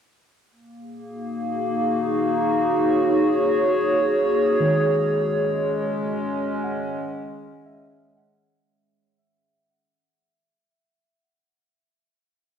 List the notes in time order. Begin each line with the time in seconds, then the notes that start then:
0.51 A#3
0.79 G#4
1.06 D#4 F#4
2.38 C#5
4.60 D#3 G#3
4.86 G#3
5.10 C#4
6.64 F#5
7.66 E5